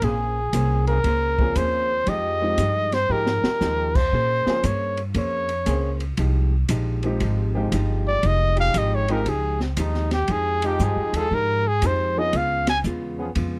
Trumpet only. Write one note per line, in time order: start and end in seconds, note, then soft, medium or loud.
0.04 0.87 G#4 medium
0.88 1.58 A#4 loud
1.57 2.11 C5 medium
2.09 2.95 D#5 medium
2.94 3.13 C5 loud
3.12 3.97 A#4 medium
3.96 4.67 C5 loud
4.66 5.03 C#5 medium
5.18 5.98 C#5 medium
8.08 8.28 D5 loud
8.27 8.59 D#5 loud
8.60 8.79 F5 loud
8.78 8.97 D#5 medium
8.95 9.14 C#5 medium
9.12 9.31 A#4 medium
9.29 9.62 G#4 loud
9.63 9.79 C4 medium
9.80 10.13 D#4 medium
10.13 10.33 G4 loud
10.31 10.68 G#4 medium
10.66 10.85 G4 medium
10.84 11.18 G#4 medium
11.16 11.36 A4 loud
11.35 11.69 A#4 loud
11.68 11.88 G#4 medium
11.86 12.20 C5 medium
12.19 12.38 D#5 loud
12.37 12.69 F5 medium
12.70 12.79 G#5 loud